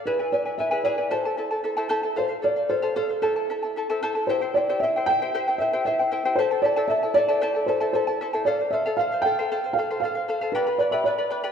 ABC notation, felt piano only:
X:1
M:2/4
L:1/16
Q:1/4=115
K:Am
V:1 name="Felt piano"
B2 d2 e2 d2 | c6 z2 | c2 d2 c2 A2 | A6 z2 |
c2 d2 e2 g2- | g2 e2 e3 z | c2 d2 e2 d2- | d2 c2 c3 z |
d2 e2 f2 g2- | g2 f2 f3 z | B2 d e d4 |]